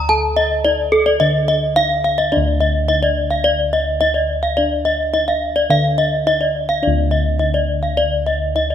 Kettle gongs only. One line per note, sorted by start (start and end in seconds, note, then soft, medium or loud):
0.00 1.18 D2 loud
0.09 1.72 A4 medium
0.65 0.73 D#4 medium
1.21 2.85 D3 medium
1.76 1.84 D#4 soft
2.32 3.97 D4 medium
2.37 5.69 D2 medium
2.89 2.97 D#4 soft
4.01 4.09 D#4 soft
4.58 6.23 D4 soft
5.14 5.22 D#4 soft
5.70 7.36 D3 medium
6.27 6.35 D#4 soft
6.83 8.52 D4 medium
6.87 8.75 D2 medium
7.40 7.48 D#4 soft
8.55 8.63 D#4 soft